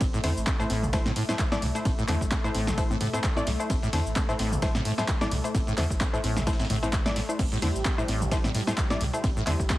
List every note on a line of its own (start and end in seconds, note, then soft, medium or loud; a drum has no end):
0.01 0.09 A1 loud
0.01 0.05 A2 medium
0.01 7.40 A3 medium
0.01 kick loud
0.01 ride medium
0.01 tambourine medium
0.01 high conga medium
0.01 shaker medium
0.13 0.19 A2 loud
0.13 snare soft
0.13 shaker soft
0.24 0.32 E2 medium
0.24 0.31 D3 medium
0.24 0.41 A3 medium
0.24 0.41 E4 medium
0.24 0.41 C5 medium
0.24 open hi-hat loud
0.24 open hi-hat medium
0.24 high conga soft
0.37 0.43 A1 loud
0.37 shaker medium
0.47 0.51 A3 medium
0.47 kick loud
0.47 snare loud
0.47 clap loud
0.47 ride medium
0.47 tambourine medium
0.47 high conga medium
0.47 shaker medium
0.60 0.65 A2 medium
0.60 0.76 A3 medium
0.60 0.76 E4 medium
0.60 0.76 C5 loud
0.60 shaker soft
0.70 1.10 A1 medium
0.70 0.84 A2 medium
0.70 snare medium
0.70 open hi-hat loud
0.70 tambourine medium
0.70 high conga soft
0.83 0.91 A1 medium
0.83 mid tom medium
0.83 shaker medium
0.93 1.11 A3 medium
0.93 0.97 A3 medium
0.93 1.11 E4 medium
0.93 1.11 C5 medium
0.93 kick loud
0.93 snare medium
0.93 ride medium
0.93 tambourine medium
0.93 shaker medium
1.06 1.11 A2 loud
1.06 snare medium
1.06 mid tom medium
1.06 high conga medium
1.06 shaker soft
1.16 1.23 A2 loud
1.16 open hi-hat loud
1.16 tambourine medium
1.29 1.35 A2 medium
1.29 1.38 A3 loud
1.29 1.38 E4 medium
1.29 1.38 C5 loud
1.29 snare medium
1.29 high conga soft
1.29 shaker medium
1.39 1.43 A3 medium
1.39 kick loud
1.39 snare loud
1.39 clap loud
1.39 ride medium
1.39 tambourine medium
1.39 shaker medium
1.52 1.58 A2 medium
1.52 1.61 A3 loud
1.52 1.61 E4 medium
1.52 1.61 D5 loud
1.52 snare medium
1.52 high conga medium
1.52 shaker soft
1.62 1.70 C2 medium
1.62 1.66 A2 medium
1.62 mid tom medium
1.62 open hi-hat loud
1.62 tambourine medium
1.75 1.91 A3 medium
1.75 1.91 E4 medium
1.75 1.91 C5 medium
1.75 closed hi-hat soft
1.75 shaker medium
1.85 1.94 A1 loud
1.85 1.90 A2 medium
1.85 kick loud
1.85 ride medium
1.85 tambourine medium
1.85 high conga medium
1.85 shaker medium
1.98 2.04 A2 loud
1.98 shaker soft
2.08 2.17 E2 medium
2.08 2.15 D3 medium
2.08 2.26 A3 medium
2.08 2.26 E4 medium
2.08 2.26 C5 medium
2.08 snare soft
2.08 clap medium
2.08 open hi-hat loud
2.08 tambourine medium
2.08 high conga soft
2.21 2.28 A1 loud
2.21 kick medium
2.21 closed hi-hat soft
2.21 shaker medium
2.31 2.36 A3 medium
2.31 kick loud
2.31 snare loud
2.31 clap loud
2.31 ride medium
2.31 tambourine medium
2.31 high conga medium
2.31 shaker medium
2.44 2.50 A2 medium
2.44 2.61 A3 medium
2.44 2.61 E4 medium
2.44 2.61 C5 loud
2.44 shaker soft
2.55 2.95 A1 medium
2.55 2.69 A2 medium
2.55 open hi-hat loud
2.55 tambourine medium
2.55 high conga soft
2.67 2.76 A1 medium
2.67 snare medium
2.67 mid tom medium
2.67 shaker medium
2.78 2.95 A3 medium
2.78 2.82 A3 medium
2.78 2.95 E4 medium
2.78 2.95 C5 medium
2.78 kick loud
2.78 ride medium
2.78 tambourine medium
2.78 shaker medium
2.90 2.96 A2 loud
2.90 high conga medium
2.90 shaker soft
3.01 3.08 A2 loud
3.01 mid tom medium
3.01 open hi-hat loud
3.01 tambourine medium
3.13 3.19 A2 medium
3.13 3.23 A3 loud
3.13 3.23 E4 medium
3.13 3.23 C5 loud
3.13 closed hi-hat soft
3.13 high conga soft
3.13 shaker medium
3.24 3.28 A3 medium
3.24 kick loud
3.24 snare loud
3.24 clap loud
3.24 ride medium
3.24 tambourine medium
3.24 shaker medium
3.36 3.42 A2 medium
3.36 3.46 A3 medium
3.36 3.46 E4 medium
3.36 3.46 D5 loud
3.36 snare soft
3.36 high conga medium
3.36 shaker soft
3.47 3.55 C2 medium
3.47 3.51 A2 medium
3.47 snare medium
3.47 snare soft
3.47 open hi-hat loud
3.47 tambourine medium
3.60 3.76 A3 medium
3.60 3.76 E4 medium
3.60 3.76 C5 medium
3.60 shaker medium
3.70 3.78 A1 loud
3.70 3.74 A2 medium
3.70 kick loud
3.70 ride medium
3.70 tambourine medium
3.70 high conga medium
3.70 shaker medium
3.83 3.88 A2 loud
3.83 snare soft
3.83 shaker soft
3.93 4.01 E2 loud
3.93 4.00 D3 medium
3.93 4.11 A3 medium
3.93 4.11 E4 medium
3.93 4.11 C5 medium
3.93 open hi-hat medium
3.93 open hi-hat loud
3.93 high conga soft
4.06 4.12 A1 loud
4.06 shaker medium
4.16 4.20 A3 medium
4.16 kick loud
4.16 snare loud
4.16 clap loud
4.16 ride medium
4.16 tambourine medium
4.16 high conga medium
4.16 shaker medium
4.29 4.34 A2 medium
4.29 4.45 A3 medium
4.29 4.45 E4 medium
4.29 4.45 C5 loud
4.29 shaker soft
4.39 4.79 A1 medium
4.39 4.53 A2 medium
4.39 snare loud
4.39 open hi-hat loud
4.39 tambourine medium
4.39 high conga soft
4.52 4.60 A1 medium
4.52 mid tom medium
4.52 shaker medium
4.62 4.80 A3 medium
4.62 4.66 A3 medium
4.62 4.80 E4 medium
4.62 4.80 C5 medium
4.62 kick loud
4.62 snare medium
4.62 ride medium
4.62 tambourine medium
4.62 shaker medium
4.75 4.81 A2 loud
4.75 snare medium
4.75 snare loud
4.75 mid tom medium
4.75 tambourine medium
4.75 high conga medium
4.75 shaker soft
4.85 4.92 A2 loud
4.85 open hi-hat loud
4.98 5.04 A2 medium
4.98 5.08 A3 loud
4.98 5.08 E4 medium
4.98 5.08 C5 loud
4.98 snare medium
4.98 tambourine medium
4.98 high conga soft
4.98 shaker medium
5.08 5.13 A3 medium
5.08 kick loud
5.08 snare loud
5.08 clap loud
5.08 ride medium
5.08 tambourine medium
5.08 shaker medium
5.21 5.27 A2 medium
5.21 5.31 A3 medium
5.21 5.31 E4 medium
5.21 5.31 D5 loud
5.21 snare medium
5.21 high conga medium
5.21 shaker soft
5.31 5.40 C2 medium
5.31 5.36 A2 medium
5.31 mid tom medium
5.31 open hi-hat loud
5.31 tambourine medium
5.44 5.61 A3 medium
5.44 5.61 E4 medium
5.44 5.61 C5 medium
5.44 closed hi-hat soft
5.44 shaker medium
5.54 5.63 A1 loud
5.54 5.59 A2 medium
5.54 kick loud
5.54 ride medium
5.54 tambourine medium
5.54 high conga medium
5.54 shaker medium
5.67 5.73 A2 loud
5.67 shaker soft
5.78 5.86 E2 loud
5.78 5.85 D3 medium
5.78 5.95 A3 medium
5.78 5.95 E4 medium
5.78 5.95 C5 medium
5.78 snare soft
5.78 clap medium
5.78 open hi-hat loud
5.78 tambourine medium
5.78 high conga soft
5.90 5.97 A1 loud
5.90 kick medium
5.90 closed hi-hat soft
5.90 shaker medium
6.01 6.05 A3 medium
6.01 kick loud
6.01 snare loud
6.01 clap loud
6.01 ride medium
6.01 tambourine medium
6.01 high conga medium
6.01 shaker medium
6.13 6.19 A2 medium
6.13 6.30 A3 medium
6.13 6.30 E4 medium
6.13 6.30 C5 loud
6.13 shaker soft
6.24 6.64 A1 medium
6.24 6.38 A2 medium
6.24 open hi-hat loud
6.24 tambourine medium
6.24 high conga soft
6.37 6.45 A1 medium
6.37 snare medium
6.37 mid tom medium
6.37 shaker medium
6.47 6.51 A3 medium
6.47 6.65 A3 medium
6.47 6.65 E4 medium
6.47 6.65 C5 medium
6.47 kick loud
6.47 snare medium
6.47 ride medium
6.47 tambourine medium
6.47 shaker medium
6.53 snare medium
6.53 tambourine medium
6.60 6.65 A2 loud
6.60 snare medium
6.60 tambourine medium
6.60 high conga medium
6.60 shaker soft
6.65 snare medium
6.65 tambourine medium
6.70 7.22 A1 loud
6.70 6.77 A2 loud
6.70 mid tom medium
6.70 open hi-hat loud
6.70 tambourine medium
6.83 6.88 A2 medium
6.83 6.92 A3 loud
6.83 6.92 E4 medium
6.83 6.92 C5 loud
6.83 closed hi-hat soft
6.83 high conga soft
6.83 shaker medium
6.93 6.97 A3 medium
6.93 kick loud
6.93 snare loud
6.93 clap loud
6.93 ride medium
6.93 tambourine medium
6.93 shaker medium
7.06 7.11 A2 medium
7.06 7.15 A3 medium
7.06 7.15 E4 medium
7.06 7.15 D5 loud
7.06 snare medium
7.06 high conga medium
7.06 shaker soft
7.16 7.20 A2 medium
7.16 snare soft
7.16 snare medium
7.16 open hi-hat loud
7.16 tambourine medium
7.29 7.45 A3 medium
7.29 7.45 E4 medium
7.29 7.45 C5 medium
7.29 shaker medium
7.39 7.47 A1 loud
7.39 7.43 A2 medium
7.39 9.78 G3 medium
7.39 kick loud
7.39 ride medium
7.39 tambourine medium
7.39 crash medium
7.39 high conga medium
7.39 shaker medium
7.52 7.58 A2 loud
7.52 snare soft
7.52 shaker soft
7.62 7.70 E2 medium
7.62 7.69 D3 medium
7.62 7.80 A3 medium
7.62 7.80 E4 medium
7.62 7.80 C5 medium
7.62 open hi-hat medium
7.62 open hi-hat loud
7.62 high conga soft
7.75 7.82 A1 loud
7.75 shaker medium
7.85 7.90 A3 medium
7.85 kick loud
7.85 snare loud
7.85 clap loud
7.85 ride medium
7.85 tambourine medium
7.85 high conga medium
7.85 shaker medium
7.98 8.04 A2 medium
7.98 8.14 A3 medium
7.98 8.14 E4 medium
7.98 8.14 C5 loud
7.98 shaker soft
8.08 8.49 A1 medium
8.08 8.23 A2 medium
8.08 snare medium
8.08 open hi-hat loud
8.08 tambourine medium
8.08 high conga soft
8.21 8.30 A1 medium
8.21 mid tom loud
8.21 shaker medium
8.31 8.49 A3 medium
8.31 8.36 A3 medium
8.31 8.49 E4 medium
8.31 8.49 C5 medium
8.31 kick loud
8.31 snare medium
8.31 ride medium
8.31 tambourine medium
8.31 shaker medium
8.44 8.50 A2 loud
8.44 snare medium
8.44 mid tom medium
8.44 high conga medium
8.44 shaker soft
8.54 8.62 A2 loud
8.54 open hi-hat loud
8.54 tambourine medium
8.67 8.73 A2 medium
8.67 8.77 A3 loud
8.67 8.77 E4 medium
8.67 8.77 C5 loud
8.67 snare medium
8.67 high conga soft
8.67 shaker medium
8.78 8.82 A3 medium
8.78 kick loud
8.78 snare loud
8.78 clap loud
8.78 ride medium
8.78 tambourine medium
8.78 shaker medium
8.90 8.96 A2 medium
8.90 9.00 A3 medium
8.90 9.00 E4 medium
8.90 9.00 D5 loud
8.90 snare medium
8.90 high conga medium
8.90 shaker soft
9.01 9.09 C2 medium
9.01 9.05 A2 medium
9.01 mid tom medium
9.01 open hi-hat loud
9.01 tambourine medium
9.13 9.30 A3 medium
9.13 9.30 E4 medium
9.13 9.30 C5 medium
9.13 closed hi-hat soft
9.13 shaker medium
9.24 9.32 A1 loud
9.24 9.28 A2 medium
9.24 kick loud
9.24 ride medium
9.24 tambourine medium
9.24 high conga medium
9.24 shaker medium
9.36 9.42 A2 loud
9.36 shaker soft
9.47 9.55 E2 loud
9.47 9.54 D3 medium
9.47 9.65 A3 medium
9.47 9.65 E4 medium
9.47 9.65 C5 medium
9.47 snare soft
9.47 clap medium
9.47 open hi-hat loud
9.47 tambourine medium
9.47 high conga soft
9.60 9.66 A1 loud
9.60 kick medium
9.60 closed hi-hat soft
9.60 shaker medium
9.70 9.74 A3 medium
9.70 kick loud
9.70 snare loud
9.70 clap loud
9.70 ride medium
9.70 tambourine medium
9.70 high conga medium
9.70 shaker medium